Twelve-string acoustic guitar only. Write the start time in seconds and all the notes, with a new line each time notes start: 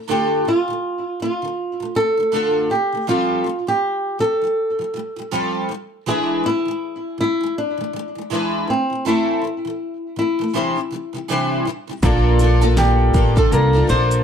0.08 D3 A3 D4 F4 A4
0.45 D3 A3
0.68 D3 A3
1.20 D3 A3
1.42 D3 A3
1.80 D3 A3
1.95 D3 A3
2.17 D3 A3
2.32 D3 A3 D4 F4 A4
2.73 A3
2.92 D3 A3
3.07 F3 G3 C4 F4 A4
3.44 F3 G3
3.67 F3 G3
4.19 F3 G3
4.42 F3 G3
4.79 F3 G3
4.94 F3 G3
5.16 F3 G3
5.31 F3 G3 C4 F4 A4
5.69 F3 G3
6.06 E3 G#3 D4 E4 B4
6.44 E3 G#3
6.65 E3 G#3
7.18 E3 G#3
7.41 E3 G#3
7.77 E3 G#3
7.93 E3 G#3
8.15 E3 G#3
8.30 E3 G#3 D4 E4 B4
8.68 E3 A3
8.90 E3 A3
9.05 E3 A3 C4 E4 A4
9.42 E3 A3
9.65 E3 A3
10.16 E3 A3
10.39 E3 A3
10.53 C3 E3 G3 D4 E4 C5
10.76 C3 E3 G3
10.91 C3 E3 G3
11.13 C3 E3 G3
11.28 C3 E3 G3 D4 E4 C5
11.65 C3 E3 G3
11.87 C3 E3 G3
12.02 A#3 D4 F4 A4
12.39 A#3 D4 F4 A4
12.61 A#3 D4 F4 A4
13.13 A#3 D4 F4 A4
13.36 D4 F4 A4
13.73 D4 F4 A4
13.87 A#3 D4 F4 A4